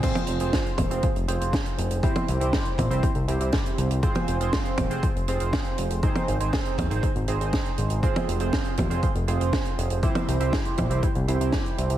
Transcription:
<<
  \new Staff \with { instrumentName = "Analog polysynth" } { \time 4/4 \key f \minor \tempo 4 = 120 <c' f' aes' c''>8. <c' f' aes' c''>4 <c' f' aes' c''>16 r8 <c' f' aes' c''>16 <c' f' aes' c''>4~ <c' f' aes' c''>16 | <c' e' g' c''>8. <c' e' g' c''>4 <c' e' g' c''>16 r8 <c' e' g' c''>16 <c' e' g' c''>4~ <c' e' g' c''>16 | <c' f' aes' c''>8. <c' f' aes' c''>4 <c' f' aes' c''>16 r8 <c' f' aes' c''>16 <c' f' aes' c''>4~ <c' f' aes' c''>16 | <c' ees' aes' c''>8. <c' ees' aes' c''>4 <c' ees' aes' c''>16 r8 <c' ees' aes' c''>16 <c' ees' aes' c''>4~ <c' ees' aes' c''>16 |
<c' f' aes' c''>8. <c' f' aes' c''>4 <c' f' aes' c''>16 r8 <c' f' aes' c''>16 <c' f' aes' c''>4~ <c' f' aes' c''>16 | <c' e' g' c''>8. <c' e' g' c''>4 <c' e' g' c''>16 r8 <c' e' g' c''>16 <c' e' g' c''>4~ <c' e' g' c''>16 | }
  \new Staff \with { instrumentName = "Analog synth bass" } { \clef bass \time 4/4 \key f \minor r8 f,,16 f,,16 r8 ees,,16 f,,16 r16 f,,16 f,,16 f,,16 r8 f,,16 f,,16 | r8 c,16 c,16 r8 bes,,16 c,16 r16 c,16 c,16 c,16 r8 c,16 c,16 | r8 f,,16 f,,16 r8 ees,,16 f,,16 r16 f,,16 f,,16 f,,16 r8 f,,16 f,,16 | r8 aes,,16 aes,,16 r8 ees,,16 aes,,16 r16 aes,,16 aes,,16 aes,,16 r8 aes,,16 aes,,16 |
r8 f,,16 f,,16 r8 ees,,16 f,,16 r16 f,,16 f,,16 f,,16 r8 f,,16 f,,16 | r8 c,16 c,16 r8 bes,,16 c,16 r16 c,16 c,16 c,16 r8 c,16 c,16 | }
  \new DrumStaff \with { instrumentName = "Drums" } \drummode { \time 4/4 <cymc hh bd>16 <hh tommh>16 hh16 hh16 <hh bd sn>16 hh16 <hh bd tommh>16 hh16 <hh bd>16 hh16 hh16 hh16 <hh bd sn>16 hh16 hh16 hh16 | <hh bd>16 <hh tommh>16 hh16 hh16 <hh bd sn>16 hh16 <hh bd tommh>16 hh16 <hh bd>16 hh16 hh16 hh16 <hh bd sn>16 hh16 hh16 hh16 | <hh bd>16 <hh tommh>16 hh16 hh16 <hh bd sn>16 hh16 <hh bd tommh>16 hh16 <hh bd>16 hh16 hh16 hh16 <hh bd sn>16 hh16 hh16 hh16 | <hh bd>16 <hh tommh>16 hh16 hh16 <hh bd sn>16 hh16 <hh bd tommh>16 hh16 <hh bd>16 hh16 hh16 hh16 <hh bd sn>16 hh16 hh16 hh16 |
<hh bd>16 <hh tommh>16 hh16 hh16 <hh bd sn>16 hh16 <hh bd tommh>16 hh16 <hh bd>16 hh16 hh16 hh16 <hh bd sn>16 hh16 hh16 hh16 | <hh bd>16 <hh tommh>16 hh16 hh16 <hh bd sn>16 hh16 <hh bd tommh>16 hh16 <hh bd>16 hh16 hh16 hh16 <hh bd sn>16 hh16 hh16 hh16 | }
>>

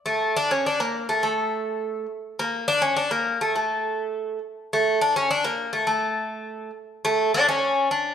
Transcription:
\new Staff \with { instrumentName = "Bouzouki" } { \time 2/4 \key a \phrygian \tempo 4 = 103 a8 d'16 cis'16 d'16 bes8 a16 | a4. r8 | bes8 d'16 cis'16 d'16 bes8 a16 | a4. r8 |
a8 d'16 cis'16 d'16 bes8 a16 | a4. r8 | a8 d'16 cis'8. d'8 | }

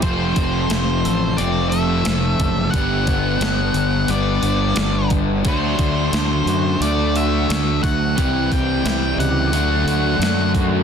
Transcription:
<<
  \new Staff \with { instrumentName = "Lead electric guitar" } { \time 4/4 \key g \major \tempo 4 = 88 c''2 d''8 e''4. | fis''2 d''4. r8 | c''2 d''8 e''4 fis''8~ | fis''8 g''4 fis''2 r8 | }
  \new Staff \with { instrumentName = "Clean electric guitar" } { \time 4/4 \key g \major f8 c'4 a'8 c'8 a'4 a'8 | r8 b8 d'4 b4 d'4 | fis8 a8 d'8 fis'8 a8 fis'8 d'8 fis'8 | e4 e'8 g'8 a8 fis'8 d'8 fis'8 | }
  \new Staff \with { instrumentName = "Overdriven electric guitar" } { \time 4/4 \key g \major <f, c f a c' f'>1 | <g, d g b d' g'>1 | <d a d' fis'>1 | <c e g c' g'>2 <d a d' fis'>2 | }
  \new Staff \with { instrumentName = "Overdriven electric guitar" } { \clef bass \time 4/4 \key g \major <f, c f a c'>2 <f, c f a c'>2 | <g, d g b d'>2 <g, d g b d'>2 | <d fis a d'>2 <d fis a d'>2 | <c g c' e'>2 <d fis a d'>2 | }
  \new Staff \with { instrumentName = "Fingered electric bass" } { \clef bass \time 4/4 \key g \major f,,8 f,,8 f,,8 a,,8 f,,4 f,,8 fis,,8 | g,,4 g,,8 g,,8 g,,8 g,,8 g,,4 | d,8 d,8 d,8 fis,8 d,4 d,8 d,8 | c,4 c,8 cis,8 d,8 d,8 fis,4 | }
  \new DrumStaff \with { instrumentName = "Drums" } \drummode { \time 4/4 <hho bd>8 <hho bd>8 <hho sn>8 hho8 hho8 hho8 <hho sn>8 <hho bd>8 | <hho bd>8 <hho bd>8 <hho sn>8 hho8 hho8 hho8 <hho sn>8 <hho bd>8 | <hho bd>8 <hho bd>8 <hho sn>8 hho8 hho8 hho8 <hho sn>8 <hho bd>8 | <hho bd>8 <hho bd>8 <hho sn>8 hho8 hho8 hho8 <hho sn>8 <hho bd>8 | }
>>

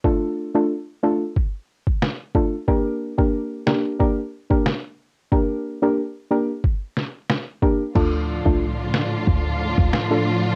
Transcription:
<<
  \new Staff \with { instrumentName = "Synth pluck" } { \time 4/4 \key d \minor \tempo 4 = 91 <a d' f' a'>8. <a d' f' a'>16 r8 <a d' f' a'>16 r4. r16 <a d' f' a'>16 r16 | <bes d' g' bes'>8. <bes d' g' bes'>8. <bes d' g' bes'>8 <bes d' g' bes'>16 r8 <bes d' g' bes'>16 r4 | <bes d' g' bes'>8. <bes d' g' bes'>16 r8 <bes d' g' bes'>16 r4. r16 <bes d' g' bes'>16 r16 | <a d' f' a'>8. <a d' f' a'>16 r2 r16 <a d' f' a'>16 r8 | }
  \new Staff \with { instrumentName = "String section" } { \clef bass \time 4/4 \key d \minor r1 | r1 | r1 | <a, d f d' f'>1 | }
  \new Staff \with { instrumentName = "808-style bass" } { \clef bass \time 4/4 \key d \minor r1 | r1 | r1 | d,8. c,8. r8 d,8. d,16 r4 | }
  \new DrumStaff \with { instrumentName = "Drums" } \drummode { \time 4/4 bd4 r4 bd8. bd16 sn8 bd8 | bd8. bd16 r8 sn8 bd8. bd16 sn4 | bd4 r4 bd8 sn8 <ss sn>8 bd8 | <cymc bd>8. bd16 r8 sn8 bd8. bd16 sn4 | }
>>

